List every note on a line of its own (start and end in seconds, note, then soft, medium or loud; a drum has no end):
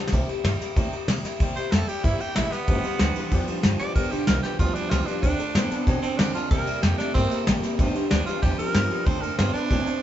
0.00 0.12 F3 soft
0.00 0.13 B3 medium
0.00 0.12 D4 medium
0.00 0.12 G4 medium
0.07 snare medium
0.12 0.24 C2 loud
0.12 0.28 C3 medium
0.12 0.28 G3 medium
0.12 0.29 A#3 medium
0.12 0.28 E4 loud
0.12 0.26 G4 medium
0.12 kick loud
0.12 snare soft
0.12 ride medium
0.27 0.43 A#3 medium
0.27 0.44 E4 medium
0.27 0.44 G4 medium
0.27 muted upright bass stroke medium
0.27 ride medium
0.44 0.55 G2 medium
0.44 0.60 G3 medium
0.44 0.60 A#3 medium
0.44 0.59 E4 medium
0.44 0.58 G4 medium
0.44 snare loud
0.44 ride medium
0.59 0.76 A#3 medium
0.59 0.76 E4 medium
0.59 0.75 G4 medium
0.59 muted upright bass stroke medium
0.59 snare soft
0.59 ride medium
0.76 0.88 A2 medium
0.76 0.92 C3 medium
0.76 0.92 G3 medium
0.76 0.92 A#3 medium
0.76 0.91 E4 medium
0.76 0.91 G4 medium
0.76 kick loud
0.76 snare soft
0.76 ride medium
0.92 1.08 A#3 medium
0.92 1.08 E4 medium
0.92 1.08 G4 medium
0.92 muted upright bass stroke medium
0.92 ride medium
1.08 1.19 C3 medium
1.08 1.24 G3 medium
1.08 1.24 A#3 medium
1.08 1.24 E4 medium
1.08 1.23 G4 medium
1.08 snare loud
1.08 ride medium
1.24 1.41 A#3 medium
1.24 1.41 E4 medium
1.24 1.40 G4 medium
1.24 muted upright bass stroke medium
1.24 snare soft
1.24 ride medium
1.40 1.52 C2 medium
1.40 1.56 C3 medium
1.40 1.57 G3 medium
1.40 1.57 A#3 medium
1.40 1.57 E4 loud
1.40 1.56 G4 loud
1.40 kick loud
1.40 ride medium
1.56 1.68 E2 medium
1.56 1.72 A#3 soft
1.56 1.73 E4 medium
1.56 1.73 G4 medium
1.56 1.73 C5 medium
1.56 ride medium
1.71 1.84 F2 medium
1.71 1.88 G3 medium
1.71 1.89 A#3 medium
1.71 1.89 E4 medium
1.71 1.88 G4 medium
1.71 1.89 A4 medium
1.71 snare loud
1.71 ride medium
1.88 2.03 A#3 soft
1.88 2.04 E4 medium
1.88 2.06 G4 loud
1.88 2.04 G4 medium
1.88 muted upright bass stroke medium
1.88 ride medium
2.03 2.16 G2 medium
2.03 2.20 C3 medium
2.03 2.20 G3 medium
2.03 2.20 A#3 medium
2.03 2.22 E4 medium
2.03 2.20 E4 medium
2.03 2.18 G4 medium
2.03 kick loud
2.03 ride medium
2.20 2.35 A#3 soft
2.20 2.35 E4 medium
2.20 2.36 G4 medium
2.20 2.37 G4 loud
2.20 muted upright bass stroke medium
2.20 ride medium
2.35 2.48 A1 medium
2.35 2.51 G3 medium
2.35 2.52 A#3 medium
2.35 2.53 E4 medium
2.35 2.52 E4 medium
2.35 2.51 G4 medium
2.35 snare loud
2.35 ride medium
2.52 2.68 A#3 soft
2.52 3.45 B3 loud
2.52 2.68 E4 medium
2.52 2.68 G4 medium
2.52 snare soft
2.52 ride medium
2.67 2.79 G1 loud
2.67 2.83 G2 medium
2.67 2.82 G2 medium
2.67 2.84 D3 medium
2.67 2.83 D3 loud
2.67 2.84 F3 medium
2.67 2.84 B3 medium
2.67 2.83 F4 medium
2.67 2.83 G4 medium
2.67 kick loud
2.67 ride medium
2.84 2.98 G2 medium
2.84 2.98 D3 medium
2.84 2.98 F3 soft
2.84 2.99 B3 soft
2.84 3.00 F4 medium
2.84 3.00 G4 medium
2.84 muted upright bass stroke medium
2.84 ride medium
2.99 3.11 D2 medium
2.99 3.14 G2 medium
2.99 3.14 E3 medium
2.99 3.15 F3 medium
2.99 3.16 B3 medium
2.99 3.16 F4 medium
2.99 3.15 G4 medium
2.99 snare loud
2.99 ride medium
3.15 3.30 G2 medium
3.15 3.30 E3 medium
3.15 3.31 F3 medium
3.15 3.32 B3 medium
3.15 3.32 F4 medium
3.15 3.32 G4 medium
3.15 ride medium
3.31 3.43 E2 medium
3.31 3.46 G2 medium
3.31 3.48 G2 medium
3.31 3.48 D3 medium
3.31 3.46 F3 medium
3.31 3.48 F3 loud
3.31 3.48 B3 medium
3.31 3.47 F4 loud
3.31 3.46 G4 medium
3.31 kick loud
3.31 ride medium
3.47 3.62 G2 medium
3.47 3.62 F3 medium
3.47 3.62 F3 soft
3.47 3.63 B3 medium
3.47 3.64 F4 medium
3.47 3.63 G4 medium
3.47 muted upright bass stroke medium
3.47 ride medium
3.63 3.78 G2 medium
3.63 3.75 G2 medium
3.63 3.79 F3 medium
3.63 3.78 F3 medium
3.63 3.80 B3 medium
3.63 3.79 F4 medium
3.63 3.79 G4 medium
3.63 snare loud
3.63 ride medium
3.79 3.93 G2 medium
3.79 3.94 F3 medium
3.79 3.95 F3 soft
3.79 3.96 B3 soft
3.79 3.96 F4 medium
3.79 3.96 G4 medium
3.79 3.95 D5 loud
3.79 muted upright bass stroke medium
3.79 snare soft
3.79 ride medium
3.95 4.07 G1 medium
3.95 4.09 G2 medium
3.95 4.12 G2 medium
3.95 4.10 D3 loud
3.95 4.12 D3 medium
3.95 4.12 F3 medium
3.95 4.12 B3 medium
3.95 4.11 F4 medium
3.95 4.10 G4 medium
3.95 4.12 A#4 medium
3.95 kick loud
3.95 ride medium
4.11 4.23 B1 medium
4.11 4.26 G2 medium
4.11 4.26 D3 medium
4.11 4.27 F3 soft
4.11 4.27 B3 soft
4.11 4.28 F4 medium
4.11 4.27 G4 medium
4.11 ride medium
4.27 4.39 C2 medium
4.27 4.42 G2 medium
4.27 4.42 E3 medium
4.27 4.44 F3 medium
4.27 4.44 B3 medium
4.27 4.43 F4 medium
4.27 4.41 G4 medium
4.27 4.42 A#4 loud
4.27 snare loud
4.27 ride medium
4.43 4.58 G2 medium
4.43 4.58 E3 medium
4.43 4.59 F3 soft
4.43 4.59 B3 soft
4.43 4.60 F4 medium
4.43 4.59 G4 medium
4.43 4.58 G4 medium
4.43 muted upright bass stroke medium
4.43 snare soft
4.43 ride medium
4.59 4.71 D2 medium
4.59 4.74 G2 medium
4.59 4.76 G2 medium
4.59 4.76 D3 medium
4.59 4.74 F3 medium
4.59 4.76 F3 medium
4.59 4.76 B3 medium
4.59 4.76 F4 loud
4.59 4.75 F4 medium
4.59 4.74 G4 medium
4.59 kick loud
4.59 snare soft
4.59 ride medium
4.75 4.90 G2 medium
4.75 4.90 F3 medium
4.75 4.89 F3 soft
4.75 4.90 B3 soft
4.75 4.92 D4 loud
4.75 4.91 F4 medium
4.75 4.91 G4 medium
4.75 muted upright bass stroke medium
4.75 ride medium
4.90 5.03 C#2 medium
4.90 5.06 G2 medium
4.90 5.07 F3 medium
4.90 5.06 F3 loud
4.90 5.07 B3 medium
4.90 5.08 F4 loud
4.90 5.07 F4 medium
4.90 5.06 G4 medium
4.90 snare loud
4.90 ride medium
5.06 5.22 G2 medium
5.06 5.22 F3 medium
5.06 5.23 F3 medium
5.06 5.23 B3 soft
5.06 5.21 D4 medium
5.06 5.24 F4 medium
5.06 5.23 G4 medium
5.06 muted upright bass stroke medium
5.06 ride medium
5.22 5.35 D2 loud
5.22 5.39 D3 medium
5.22 5.38 D3 medium
5.22 5.39 F#3 medium
5.22 5.38 A3 medium
5.22 5.39 C4 medium
5.22 5.85 D4 loud
5.22 5.39 D4 medium
5.22 5.38 A4 medium
5.22 kick loud
5.22 ride medium
5.39 5.54 D3 medium
5.39 5.54 A3 medium
5.39 5.54 C4 soft
5.39 5.55 D4 medium
5.39 5.55 A4 medium
5.39 muted upright bass stroke medium
5.39 ride medium
5.54 5.66 A2 medium
5.54 5.69 D3 medium
5.54 5.71 F#3 medium
5.54 5.70 B3 medium
5.54 5.71 C4 medium
5.54 5.71 D4 medium
5.54 5.69 A4 medium
5.54 snare loud
5.54 ride medium
5.71 5.86 D3 medium
5.71 5.86 B3 medium
5.71 5.87 C4 medium
5.71 5.87 D4 medium
5.71 5.87 A4 medium
5.71 muted upright bass stroke medium
5.71 snare soft
5.71 ride medium
5.87 5.98 B2 medium
5.87 6.01 D3 medium
5.87 6.03 D3 medium
5.87 6.03 F#3 medium
5.87 6.02 C4 medium
5.87 6.03 C4 loud
5.87 6.02 D4 loud
5.87 6.01 A4 medium
5.87 kick loud
5.87 snare soft
5.87 ride medium
6.02 6.17 D3 medium
6.02 6.19 C4 loud
6.02 6.17 C4 medium
6.02 6.19 C4 soft
6.02 6.19 D4 medium
6.02 6.19 A4 medium
6.02 muted upright bass stroke medium
6.02 ride medium
6.17 6.33 D3 medium
6.17 6.31 D3 medium
6.17 6.35 F#3 medium
6.17 6.33 C4 loud
6.17 6.35 C4 medium
6.17 6.34 D4 loud
6.17 6.35 D4 medium
6.17 6.34 A4 medium
6.17 snare loud
6.17 ride medium
6.34 6.49 D3 medium
6.34 6.49 C4 medium
6.34 6.51 C4 soft
6.34 6.51 D4 medium
6.34 6.50 F4 medium
6.34 6.51 A4 medium
6.34 muted upright bass stroke medium
6.34 snare soft
6.34 ride medium
6.51 6.63 C2 loud
6.51 6.67 C3 medium
6.51 6.65 C3 medium
6.51 6.67 G3 medium
6.51 6.66 G3 medium
6.51 6.67 A#3 medium
6.51 6.67 E4 medium
6.51 6.66 G4 medium
6.51 6.84 A#4 loud
6.51 kick loud
6.51 snare soft
6.51 ride medium
6.67 6.78 E2 medium
6.67 6.81 C3 medium
6.67 6.81 G3 medium
6.67 6.82 A#3 soft
6.67 6.82 E4 medium
6.67 6.83 G4 medium
6.67 ride medium
6.82 6.94 F2 medium
6.82 6.96 C3 medium
6.82 6.98 G3 medium
6.82 6.97 A3 medium
6.82 6.99 A#3 medium
6.82 6.98 E4 medium
6.82 6.98 G4 medium
6.82 6.97 G4 medium
6.82 snare loud
6.82 ride medium
6.98 7.13 C3 medium
6.98 7.13 A3 medium
6.98 7.14 A#3 medium
6.98 7.13 D4 loud
6.98 7.15 E4 medium
6.98 7.15 G4 medium
6.98 snare soft
6.98 ride medium
7.14 7.27 G2 medium
7.14 7.29 C3 medium
7.14 7.31 C3 medium
7.14 7.31 G3 medium
7.14 7.29 A#3 loud
7.14 7.31 A#3 medium
7.14 7.45 C4 loud
7.14 7.31 E4 medium
7.14 7.30 G4 medium
7.14 kick loud
7.14 snare soft
7.14 ride medium
7.30 7.45 C3 medium
7.30 7.45 A#3 medium
7.30 7.47 A#3 soft
7.30 7.47 E4 medium
7.30 7.47 G4 medium
7.30 muted upright bass stroke medium
7.30 ride medium
7.46 7.59 A1 medium
7.46 7.61 C3 medium
7.46 7.63 G3 medium
7.46 7.61 A#3 loud
7.46 7.63 A#3 medium
7.46 7.63 E4 medium
7.46 7.62 G4 medium
7.46 snare loud
7.46 ride medium
7.63 7.77 C3 medium
7.63 7.77 A#3 medium
7.63 7.79 A#3 soft
7.63 7.80 E4 medium
7.63 7.79 G4 medium
7.63 muted upright bass stroke medium
7.63 snare soft
7.63 ride medium
7.78 7.90 G1 medium
7.78 7.93 G2 medium
7.78 7.95 G2 medium
7.78 7.93 D3 medium
7.78 7.95 D3 loud
7.78 7.95 F3 medium
7.78 7.95 B3 loud
7.78 7.94 F4 loud
7.78 7.94 G4 loud
7.78 kick loud
7.78 ride medium
7.94 8.09 G2 medium
7.94 8.09 D3 medium
7.94 8.10 F3 medium
7.94 8.11 B3 medium
7.94 8.11 F4 medium
7.94 8.11 G4 medium
7.94 muted upright bass stroke medium
7.94 ride medium
8.10 8.23 D2 medium
8.10 8.25 G2 medium
8.10 8.25 E3 medium
8.10 8.27 F3 medium
8.10 8.28 B3 medium
8.10 8.25 D4 loud
8.10 8.27 F4 medium
8.10 8.26 G4 medium
8.10 snare loud
8.10 ride medium
8.26 8.41 G2 medium
8.26 8.41 E3 medium
8.26 8.42 F3 soft
8.26 8.42 B3 medium
8.26 8.41 F4 medium
8.26 8.43 F4 medium
8.26 8.43 G4 medium
8.26 muted upright bass stroke medium
8.26 snare soft
8.26 ride medium
8.42 8.54 E2 medium
8.42 8.58 G2 medium
8.42 8.57 G2 medium
8.42 8.59 D3 medium
8.42 8.57 F3 medium
8.42 8.59 F3 medium
8.42 8.59 B3 medium
8.42 8.59 F4 medium
8.42 8.58 G4 loud
8.42 8.58 G4 medium
8.42 kick loud
8.42 ride medium
8.58 8.73 G2 medium
8.58 8.73 F3 medium
8.58 8.73 F3 soft
8.58 8.74 B3 medium
8.58 8.75 F4 medium
8.58 8.75 G4 medium
8.58 9.07 A#4 loud
8.58 muted upright bass stroke medium
8.58 ride medium
8.74 8.86 G2 medium
8.74 8.89 G2 medium
8.74 8.90 F3 medium
8.74 8.89 F3 loud
8.74 8.91 B3 medium
8.74 8.90 F4 medium
8.74 8.89 G4 medium
8.74 snare loud
8.74 ride medium
8.90 9.05 G2 medium
8.90 9.05 F3 medium
8.90 9.06 F3 soft
8.90 9.06 B3 medium
8.90 9.07 F4 medium
8.90 9.06 G4 medium
8.90 muted upright bass stroke medium
8.90 ride medium
9.06 9.18 D2 loud
9.06 9.22 D3 medium
9.06 9.21 D3 medium
9.06 9.22 F#3 medium
9.06 9.21 A3 medium
9.06 9.22 C4 medium
9.06 9.22 D4 medium
9.06 9.20 A4 medium
9.06 9.23 C5 loud
9.06 kick loud
9.06 snare soft
9.06 ride medium
9.21 9.34 F#2 medium
9.21 9.37 D3 medium
9.21 9.37 A3 medium
9.21 9.37 C4 soft
9.21 9.38 D4 medium
9.21 9.38 A4 medium
9.21 9.37 A#4 medium
9.21 ride medium
9.37 9.50 G2 medium
9.37 9.53 D3 medium
9.37 9.54 F#3 medium
9.37 9.53 B3 loud
9.37 9.54 C4 medium
9.37 9.54 D4 medium
9.37 9.53 F4 medium
9.37 9.52 A4 medium
9.37 snare loud
9.37 ride medium
9.53 9.69 D3 medium
9.53 9.69 B3 medium
9.53 9.70 C4 medium
9.53 10.02 D4 loud
9.53 9.70 D4 medium
9.53 9.70 A4 medium
9.53 muted upright bass stroke medium
9.53 ride medium
9.70 9.82 A2 medium
9.70 9.86 D3 medium
9.70 9.84 D3 medium
9.70 9.87 F#3 medium
9.70 9.85 C4 medium
9.70 9.87 C4 medium
9.70 9.86 D4 medium
9.70 9.84 A4 loud
9.70 kick loud
9.70 snare soft
9.70 ride medium
9.85 10.00 D3 medium
9.85 10.01 C4 medium
9.85 10.01 C4 soft
9.85 10.02 D4 soft
9.85 10.02 A4 medium
9.85 muted upright bass stroke medium
9.85 ride medium